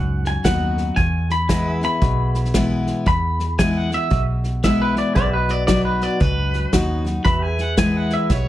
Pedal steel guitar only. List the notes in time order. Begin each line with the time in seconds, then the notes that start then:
Already playing: D#4 F#4 B4
1.49 G#4 B4 D#5
1.70 E5
5.15 G#4 B4 E5
5.37 F#4 D#5
7.25 F#4 B4 E5
7.50 G#4